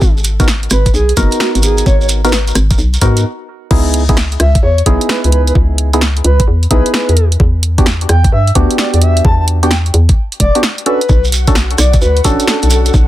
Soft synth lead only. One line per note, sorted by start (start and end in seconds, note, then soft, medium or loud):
0.71 0.89 B4 loud
0.94 1.12 G#4 medium
1.40 1.50 F#4 medium
1.55 1.60 F#4 medium
1.63 1.84 G#4 medium
1.86 1.96 C#5 medium
2.01 2.06 C#5 medium
2.24 2.38 B4 loud
3.01 3.20 F#4 loud
4.40 4.58 E5 medium
4.63 4.81 C#5 medium
5.09 5.19 B4 medium
5.24 5.29 B4 medium
5.32 5.42 B4 medium
5.48 5.53 B4 medium
6.25 6.43 B4 medium
6.71 6.89 B4 medium
6.94 7.23 B4 loud
8.09 8.27 G5 medium
8.32 8.51 E5 medium
8.79 8.88 D5 medium
8.94 8.99 D5 medium
9.02 9.23 E5 medium
9.25 9.34 A5 medium
9.40 9.45 A5 medium
9.63 9.77 G5 medium
10.40 10.58 D5 medium
10.86 11.24 B4 loud
11.78 11.97 D5 loud
12.01 12.20 B4 medium
12.48 12.57 A4 medium
12.63 12.68 A4 medium
12.71 12.80 A4 medium
12.86 12.91 A4 medium